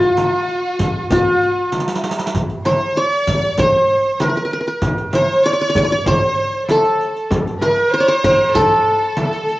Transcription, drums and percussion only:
0.02 riq, darbuka ka
0.17 riq, darbuka tek, frame drum
0.49 riq, darbuka ka
0.79 riq, frame drum, darbuka dum
1.10 riq, frame drum, darbuka dum
1.42 riq, darbuka ka
1.72 riq, darbuka tek, frame drum
1.80 riq, darbuka ka
1.88 riq, darbuka tek
1.96 riq, darbuka ka
2.04 riq, darbuka tek
2.11 riq, darbuka ka
2.19 riq, darbuka tek
2.26 riq, darbuka ka
2.34 riq, darbuka dum, frame drum
2.50 riq
2.65 riq, darbuka tek, frame drum
2.96 riq
3.27 riq, frame drum, darbuka dum
3.58 riq, frame drum, darbuka dum
3.90 darbuka ka
4.20 riq, darbuka tek, frame drum
4.36 riq, darbuka ka
4.51 riq, darbuka ka
4.67 riq
4.82 riq, frame drum, darbuka dum
4.98 riq
5.13 riq, darbuka tek, frame drum
5.45 riq
5.75 riq, frame drum, darbuka dum
6.06 riq, frame drum, darbuka dum
6.39 darbuka ka
6.69 riq, darbuka tek, frame drum
6.85 riq, darbuka ka
7.01 riq, darbuka ka
7.17 riq
7.31 riq, frame drum, darbuka dum
7.47 riq
7.62 riq, darbuka tek, frame drum
7.93 riq
8.24 riq, frame drum, darbuka dum
8.55 riq, frame drum, darbuka dum
8.87 darbuka ka
9.17 riq, darbuka tek, frame drum
9.33 riq, darbuka ka
9.48 riq, darbuka ka

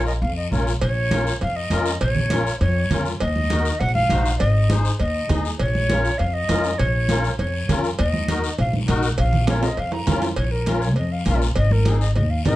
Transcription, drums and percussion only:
0.07 short guiro
0.22 long guiro
0.52 high conga, short guiro
0.67 short guiro
0.81 cowbell, high conga, long guiro
1.11 cowbell, high conga, short guiro
1.27 short guiro
1.41 cowbell, high conga, long guiro
1.70 cowbell, high conga, short guiro
1.86 short guiro
2.01 cowbell, high conga, long guiro
2.15 low conga
2.30 cowbell, high conga, short guiro
2.47 short guiro
2.61 cowbell, high conga, long guiro
2.91 cowbell, high conga, low conga, short guiro
3.05 short guiro
3.20 cowbell, high conga, long guiro
3.36 high conga
3.50 cowbell, high conga, short guiro
3.65 short guiro
3.80 cowbell, high conga, long guiro
3.95 high conga
4.09 cowbell, high conga, short guiro
4.26 short guiro
4.40 cowbell, high conga, long guiro
4.70 cowbell, high conga, short guiro
4.85 short guiro
5.00 cowbell, high conga, long guiro
5.29 cowbell, high conga, low conga, low timbale, short guiro
5.45 short guiro
5.59 cowbell, high conga, long guiro
5.75 high conga
5.89 cowbell, high conga, short guiro
6.05 short guiro
6.19 cowbell, high conga, long guiro
6.49 cowbell, high conga, low timbale, short guiro
6.64 short guiro
6.78 cowbell, high conga, long guiro
7.09 cowbell, high conga, short guiro
7.24 short guiro
7.39 cowbell, high conga, long guiro
7.69 cowbell, high conga, low conga, short guiro
7.84 short guiro
7.99 cowbell, high conga, long guiro
8.14 high conga
8.28 cowbell, high conga, short guiro
8.44 short guiro
8.58 cowbell, high conga, long guiro
8.73 high conga
8.88 cowbell, high conga, short guiro
9.03 short guiro
9.18 cowbell, high conga, long guiro
9.33 low conga
9.47 cowbell, high conga, high timbale, short guiro
9.63 high timbale, short guiro
9.77 cowbell, high conga, long guiro
9.92 low timbale
10.07 cowbell, high conga, low conga, low timbale, short guiro
10.22 low timbale, short guiro
10.36 cowbell, high conga, long guiro
10.66 cowbell, high conga, short guiro
10.82 short guiro
10.96 cowbell, high conga, long guiro
11.26 cowbell, high conga, short guiro
11.42 short guiro
11.56 cowbell, high conga
11.71 high conga
11.85 cowbell, high conga, short guiro
12.01 short guiro
12.16 cowbell, high conga, long guiro
12.45 cowbell, high conga, low conga, low timbale, short guiro

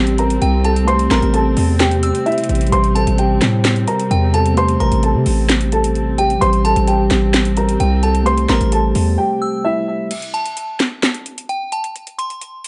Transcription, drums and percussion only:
0.07 closed hi-hat
0.18 closed hi-hat
0.30 closed hi-hat
0.42 closed hi-hat
0.64 closed hi-hat
0.76 closed hi-hat
0.88 closed hi-hat
0.99 closed hi-hat
1.11 snare, clap, closed hi-hat
1.22 closed hi-hat
1.34 closed hi-hat
1.57 open hi-hat
1.80 snare, clap, closed hi-hat
1.91 closed hi-hat
2.03 closed hi-hat
2.15 closed hi-hat
2.26 closed hi-hat
2.32 closed hi-hat
2.38 closed hi-hat
2.44 closed hi-hat
2.49 closed hi-hat
2.55 closed hi-hat
2.61 closed hi-hat
2.67 closed hi-hat
2.72 closed hi-hat
2.84 closed hi-hat
2.96 closed hi-hat
3.07 closed hi-hat
3.18 closed hi-hat
3.41 snare, clap, closed hi-hat
3.65 snare, clap, closed hi-hat
3.76 closed hi-hat
3.88 closed hi-hat
4.00 closed hi-hat
4.11 closed hi-hat
4.34 closed hi-hat
4.46 closed hi-hat
4.57 closed hi-hat
4.68 closed hi-hat
4.80 closed hi-hat
4.92 closed hi-hat
5.03 closed hi-hat
5.26 open hi-hat
5.49 snare, clap, closed hi-hat
5.61 closed hi-hat
5.72 closed hi-hat
5.84 closed hi-hat
5.95 closed hi-hat
6.18 closed hi-hat
6.30 closed hi-hat
6.42 closed hi-hat
6.53 closed hi-hat
6.65 closed hi-hat
6.76 closed hi-hat
6.88 closed hi-hat
7.10 snare, clap, closed hi-hat
7.34 snare, clap, closed hi-hat
7.45 closed hi-hat
7.57 closed hi-hat
7.69 closed hi-hat
7.80 closed hi-hat
8.03 closed hi-hat
8.15 closed hi-hat
8.26 closed hi-hat
8.38 closed hi-hat
8.49 snare, clap, closed hi-hat
8.61 closed hi-hat
8.72 closed hi-hat
8.95 open hi-hat
10.11 closed hi-hat, crash
10.22 closed hi-hat
10.34 closed hi-hat
10.46 closed hi-hat
10.57 closed hi-hat
10.80 snare, clap, closed hi-hat
11.03 snare, clap, closed hi-hat
11.14 closed hi-hat
11.26 closed hi-hat
11.38 closed hi-hat
11.49 closed hi-hat
11.72 closed hi-hat
11.84 closed hi-hat
11.96 closed hi-hat
12.07 closed hi-hat
12.19 closed hi-hat
12.30 closed hi-hat
12.41 closed hi-hat
12.64 open hi-hat

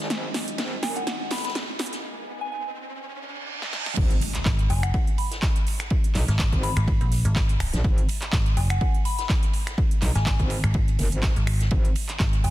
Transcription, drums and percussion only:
0.10 snare, closed hi-hat, ride
0.34 snare, open hi-hat, ride
0.48 closed hi-hat
0.58 snare, closed hi-hat, ride
0.83 snare, open hi-hat, ride
0.96 closed hi-hat
1.07 snare, closed hi-hat, ride
1.30 snare, open hi-hat, ride
1.37 snare, ride
1.45 snare, closed hi-hat, ride
1.49 snare, ride
1.55 snare, closed hi-hat, ride
1.79 snare, open hi-hat, ride
1.86 closed hi-hat
1.92 snare, closed hi-hat
3.62 snare
3.73 snare
3.86 snare
3.97 kick, ride, crash
4.11 closed hi-hat
4.21 open hi-hat, ride
4.34 clap, closed hi-hat
4.45 kick, snare, clap, ride
4.59 closed hi-hat
4.70 open hi-hat, ride
4.83 finger snap, closed hi-hat
4.94 kick, ride
5.07 closed hi-hat
5.18 open hi-hat, ride
5.31 snare, closed hi-hat
5.42 kick, snare, clap, ride
5.56 closed hi-hat
5.67 open hi-hat, ride
5.79 finger snap, snare, closed hi-hat
5.90 kick, ride
6.04 closed hi-hat
6.15 clap, open hi-hat, ride
6.28 snare, closed hi-hat
6.39 kick, snare, clap, ride
6.53 kick, closed hi-hat
6.63 open hi-hat, ride
6.77 finger snap, closed hi-hat
6.88 kick, ride
7.01 closed hi-hat, ride
7.11 snare, open hi-hat, ride
7.25 closed hi-hat
7.36 kick, snare, clap, ride
7.49 closed hi-hat, ride
7.60 finger snap, open hi-hat, ride
7.74 snare, closed hi-hat
7.84 kick, ride
7.98 closed hi-hat
8.09 open hi-hat, ride
8.22 clap, closed hi-hat
8.32 kick, snare, clap, ride
8.46 closed hi-hat
8.57 open hi-hat, ride
8.70 finger snap, closed hi-hat
8.81 kick, ride
8.94 closed hi-hat
9.05 open hi-hat, ride
9.19 snare, closed hi-hat
9.29 kick, snare, clap, ride
9.43 closed hi-hat
9.53 open hi-hat, ride
9.67 finger snap, snare, closed hi-hat
9.78 kick, ride
9.91 closed hi-hat
10.01 clap, open hi-hat, ride
10.15 snare, closed hi-hat
10.26 kick, snare, clap, ride
10.40 kick, closed hi-hat
10.50 open hi-hat, ride
10.64 finger snap, closed hi-hat
10.74 kick, ride
10.88 closed hi-hat, ride
10.99 snare, open hi-hat, ride
11.12 closed hi-hat
11.23 kick, snare, clap, ride
11.36 closed hi-hat, ride
11.47 finger snap, open hi-hat, ride
11.60 snare, closed hi-hat
11.71 kick, ride
11.85 closed hi-hat
11.96 open hi-hat, ride
12.09 clap, closed hi-hat
12.19 kick, snare, clap, ride
12.33 closed hi-hat
12.44 open hi-hat, ride

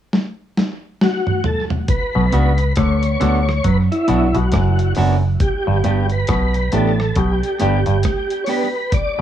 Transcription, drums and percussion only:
0.13 snare
0.57 snare
1.01 snare
1.27 mid tom
1.44 floor tom
1.70 floor tom
1.88 kick, closed hi-hat
2.32 closed hi-hat
2.58 closed hi-hat
2.76 kick, cross-stick, closed hi-hat
3.03 closed hi-hat
3.21 cross-stick, closed hi-hat
3.49 cross-stick
3.64 kick, closed hi-hat
3.92 closed hi-hat
4.08 closed hi-hat
4.35 closed hi-hat
4.52 kick, cross-stick, closed hi-hat
4.79 closed hi-hat
4.95 open hi-hat
5.40 kick, closed hi-hat
5.84 closed hi-hat
6.10 closed hi-hat
6.27 kick, cross-stick, closed hi-hat
6.54 closed hi-hat
6.72 closed hi-hat
7.00 cross-stick
7.16 kick, closed hi-hat
7.43 closed hi-hat
7.60 closed hi-hat
7.86 closed hi-hat
8.03 kick, cross-stick, closed hi-hat
8.30 closed hi-hat
8.46 open hi-hat
8.92 kick, closed hi-hat

